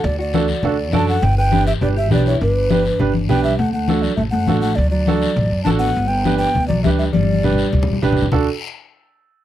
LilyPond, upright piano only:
\new Staff \with { instrumentName = "Upright piano" } { \time 4/4 \key d \major \tempo 4 = 203 r4 <d' fis' a'>8 r8 <d' fis' a'>8 r8 <d' fis' a'>8 r8 | r4 <d' g' b'>8 r8 <d' g' b'>8 r8 <d' g' b'>8 r8 | r4 <d' g' b'>8 r8 <d' g' b'>8 r8 <d' g' b'>8 r8 | r4 <d' fis' a'>8 r4. <d' fis' a'>8 r8 |
r4 <d' fis' a'>8 r4. <d' fis' a'>8 r8 | r4 <d' g' b'>8 r4. <d' g' b'>8 r8 | r4 <d' g' b'>8 r4. <d' g' b'>8 r8 | <d' fis' a'>8 r2. r8 | }